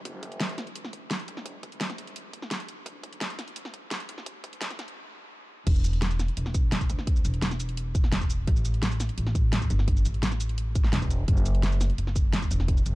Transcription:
0.05 0.65 F#1 loud
0.05 kick loud
0.05 closed hi-hat medium
0.23 kick loud
0.23 closed hi-hat medium
0.32 closed hi-hat soft
0.40 snare loud
0.40 closed hi-hat medium
0.49 closed hi-hat soft
0.58 snare soft
0.58 closed hi-hat medium
0.67 closed hi-hat soft
0.75 1.27 F#1 medium
0.75 closed hi-hat medium
0.85 snare soft
0.93 kick medium
0.93 closed hi-hat medium
1.11 snare loud
1.11 closed hi-hat medium
1.20 closed hi-hat soft
1.28 1.62 E1 medium
1.28 closed hi-hat medium
1.37 snare soft
1.46 kick loud
1.46 closed hi-hat medium
1.63 2.85 F#1 medium
1.63 kick loud
1.63 closed hi-hat medium
1.72 closed hi-hat soft
1.81 snare loud
1.81 closed hi-hat medium
1.90 snare soft
1.90 closed hi-hat soft
1.98 closed hi-hat medium
2.07 closed hi-hat soft
2.16 closed hi-hat medium
2.33 kick medium
2.33 closed hi-hat medium
2.42 snare soft
2.51 snare loud
2.51 closed hi-hat medium
2.60 closed hi-hat soft
2.69 closed hi-hat medium
2.86 3.46 D2 loud
2.86 kick loud
2.86 closed hi-hat medium
3.03 kick loud
3.03 closed hi-hat medium
3.13 closed hi-hat soft
3.21 snare loud
3.21 closed hi-hat loud
3.30 closed hi-hat soft
3.39 snare soft
3.39 closed hi-hat medium
3.48 closed hi-hat soft
3.56 4.07 D2 medium
3.56 closed hi-hat medium
3.65 snare soft
3.74 kick medium
3.74 closed hi-hat medium
3.91 snare loud
3.91 closed hi-hat medium
4.00 closed hi-hat soft
4.09 4.43 A1 loud
4.09 closed hi-hat medium
4.18 snare soft
4.26 kick loud
4.26 closed hi-hat loud
4.44 4.96 D2 medium
4.44 kick loud
4.44 closed hi-hat medium
4.53 closed hi-hat soft
4.61 snare loud
4.61 closed hi-hat loud
4.70 snare soft
4.70 closed hi-hat soft
4.79 snare soft
4.79 closed hi-hat medium
4.88 closed hi-hat soft
5.67 6.27 E1 loud
5.67 kick loud
5.67 closed hi-hat loud
5.67 crash loud
5.76 shaker soft
5.84 closed hi-hat medium
5.84 shaker medium
5.93 closed hi-hat soft
6.02 snare loud
6.02 closed hi-hat loud
6.11 closed hi-hat soft
6.11 shaker soft
6.19 snare medium
6.19 closed hi-hat medium
6.19 shaker medium
6.28 closed hi-hat soft
6.37 6.88 E1 medium
6.37 closed hi-hat loud
6.46 snare soft
6.54 kick loud
6.54 closed hi-hat medium
6.54 shaker medium
6.72 snare loud
6.72 closed hi-hat medium
6.81 kick medium
6.81 closed hi-hat soft
6.81 shaker soft
6.90 7.23 D2 loud
6.90 closed hi-hat medium
6.90 shaker medium
6.99 snare soft
7.07 kick loud
7.07 closed hi-hat loud
7.16 shaker soft
7.25 8.46 E1 medium
7.25 closed hi-hat medium
7.25 shaker medium
7.34 closed hi-hat soft
7.42 snare loud
7.42 closed hi-hat loud
7.51 snare soft
7.51 closed hi-hat soft
7.51 shaker soft
7.60 closed hi-hat medium
7.60 shaker medium
7.69 closed hi-hat soft
7.77 closed hi-hat medium
7.95 kick loud
7.95 closed hi-hat medium
7.95 shaker medium
8.04 snare soft
8.12 snare loud
8.12 closed hi-hat medium
8.21 kick medium
8.21 closed hi-hat soft
8.21 shaker soft
8.30 closed hi-hat medium
8.30 shaker medium
8.47 9.08 A1 medium
8.47 kick loud
8.47 closed hi-hat medium
8.56 shaker soft
8.65 closed hi-hat medium
8.65 shaker medium
8.74 closed hi-hat soft
8.83 snare loud
8.83 closed hi-hat medium
8.92 closed hi-hat soft
8.92 shaker soft
9.00 snare medium
9.00 closed hi-hat medium
9.00 shaker medium
9.09 closed hi-hat soft
9.18 9.69 A1 medium
9.18 closed hi-hat medium
9.27 snare soft
9.35 kick loud
9.35 closed hi-hat medium
9.35 shaker medium
9.53 snare loud
9.53 closed hi-hat medium
9.62 kick medium
9.62 closed hi-hat soft
9.62 shaker soft
9.70 10.04 G1 loud
9.70 closed hi-hat medium
9.70 shaker medium
9.79 snare soft
9.88 kick loud
9.88 closed hi-hat medium
9.97 shaker soft
10.05 10.92 A1 medium
10.05 closed hi-hat medium
10.05 shaker medium
10.14 closed hi-hat soft
10.23 snare loud
10.23 closed hi-hat medium
10.32 snare soft
10.32 closed hi-hat soft
10.32 shaker soft
10.40 closed hi-hat medium
10.40 shaker medium
10.49 closed hi-hat soft
10.58 closed hi-hat medium
10.75 kick loud
10.75 closed hi-hat medium
10.75 shaker medium
10.84 snare soft
10.93 11.27 E1 medium
10.93 snare loud
10.93 closed hi-hat medium
11.02 kick medium
11.02 closed hi-hat soft
11.02 shaker soft
11.11 closed hi-hat medium
11.11 shaker medium
11.28 11.88 F#1 medium
11.28 kick loud
11.28 closed hi-hat medium
11.37 shaker soft
11.46 closed hi-hat medium
11.46 shaker medium
11.55 closed hi-hat soft
11.63 snare loud
11.63 closed hi-hat medium
11.72 closed hi-hat soft
11.72 shaker soft
11.81 snare soft
11.81 closed hi-hat medium
11.81 shaker medium
11.90 closed hi-hat soft
11.98 12.50 F#1 medium
11.98 closed hi-hat medium
12.07 snare soft
12.16 kick loud
12.16 closed hi-hat medium
12.16 shaker medium
12.33 snare loud
12.33 closed hi-hat medium
12.42 kick medium
12.42 closed hi-hat soft
12.42 shaker soft
12.51 12.85 E1 medium
12.51 closed hi-hat medium
12.51 shaker medium
12.60 snare soft
12.68 kick loud
12.68 closed hi-hat medium
12.77 shaker soft
12.86 12.95 F#1 medium
12.86 closed hi-hat medium
12.86 shaker medium

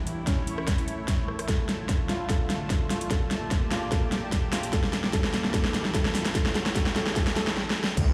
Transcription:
0.00 4.69 A3 medium
0.00 0.19 D4 loud
0.00 1.47 E4 medium
0.00 1.48 E4 medium
0.00 1.47 C#5 medium
0.00 0.52 G5 medium
0.07 closed hi-hat medium
0.14 5.38 A5 medium
0.27 1.41 C#4 medium
0.27 kick loud
0.27 snare medium
0.27 closed hi-hat medium
0.47 closed hi-hat soft
0.58 cross-stick medium
0.67 kick loud
0.67 cross-stick medium
0.67 snare medium
0.67 closed hi-hat medium
0.78 closed hi-hat soft
0.88 closed hi-hat soft
1.08 kick loud
1.08 snare medium
1.08 closed hi-hat medium
1.28 cross-stick medium
1.39 cross-stick medium
1.39 closed hi-hat medium
1.48 3.09 D3 medium
1.48 3.09 F4 medium
1.48 3.76 F4 medium
1.48 2.02 A4 medium
1.48 kick medium
1.48 snare medium
1.48 closed hi-hat medium
1.48 riser medium
1.69 snare medium
1.69 closed hi-hat medium
1.89 kick loud
1.89 snare medium
1.89 closed hi-hat medium
2.09 2.28 F4 medium
2.09 snare medium
2.09 closed hi-hat soft
2.17 3.76 D5 medium
2.29 2.83 A4 medium
2.29 kick loud
2.29 snare medium
2.29 closed hi-hat medium
2.50 snare medium
2.50 closed hi-hat soft
2.70 kick loud
2.70 snare medium
2.70 closed hi-hat medium
2.90 3.09 F4 medium
2.90 snare medium
2.90 open hi-hat loud
3.01 closed hi-hat medium
3.11 4.71 A#3 medium
3.11 6.32 G4 medium
3.11 5.24 G4 medium
3.11 3.64 A4 medium
3.11 kick medium
3.11 snare medium
3.11 closed hi-hat medium
3.31 snare medium
3.31 closed hi-hat soft
3.51 kick loud
3.51 snare medium
3.51 closed hi-hat medium
3.71 3.90 F4 medium
3.71 snare medium
3.71 closed hi-hat soft
3.92 4.45 A4 loud
3.92 kick loud
3.92 snare medium
3.92 closed hi-hat medium
4.12 snare medium
4.12 closed hi-hat soft
4.32 kick medium
4.32 snare medium
4.32 closed hi-hat medium
4.52 4.71 F4 medium
4.52 snare loud
4.52 open hi-hat loud
4.63 closed hi-hat medium
4.73 6.33 E3 medium
4.73 6.33 A#3 medium
4.73 7.57 E4 medium
4.73 5.12 A4 loud
4.73 kick loud
4.73 snare medium
4.73 closed hi-hat medium
4.84 snare medium
4.93 snare medium
4.93 closed hi-hat medium
5.04 snare medium
5.13 5.52 A4 loud
5.13 kick loud
5.13 snare medium
5.13 closed hi-hat medium
5.24 snare medium
5.34 snare loud
5.34 closed hi-hat medium
5.43 7.00 G5 medium
5.43 snare medium
5.54 5.93 A4 loud
5.54 kick loud
5.54 snare loud
5.54 closed hi-hat medium
5.65 snare medium
5.74 snare loud
5.74 closed hi-hat soft
5.85 snare medium
5.94 6.33 A4 loud
5.94 kick loud
5.94 snare loud
5.94 closed hi-hat medium
6.05 snare medium
6.15 snare loud
6.15 open hi-hat loud
6.26 snare loud
6.26 closed hi-hat medium
6.35 7.55 A3 medium
6.35 7.55 E4 medium
6.35 6.54 A4 medium
6.35 7.55 C#5 medium
6.35 kick loud
6.35 snare loud
6.35 closed hi-hat medium
6.46 snare medium
6.55 6.74 A4 loud
6.55 snare loud
6.55 closed hi-hat medium
6.66 snare medium
6.66 closed hi-hat soft
6.75 6.94 A4 loud
6.75 kick loud
6.75 snare loud
6.75 closed hi-hat medium
6.86 snare medium
6.96 7.15 A4 loud
6.96 snare loud
6.96 closed hi-hat medium
7.07 snare medium
7.16 7.35 A4 loud
7.16 kick loud
7.16 snare loud
7.16 closed hi-hat medium
7.27 snare loud
7.27 closed hi-hat soft
7.36 7.55 A4 loud
7.36 snare loud
7.36 closed hi-hat medium
7.47 snare medium
7.57 snare medium
7.70 snare medium
7.84 snare loud
7.97 8.13 D2 loud
7.97 8.13 E4 medium
7.97 8.13 F4 medium
7.97 8.13 D5 medium
7.97 kick loud
7.97 closed hi-hat medium
7.97 crash loud
7.97 sub drop medium

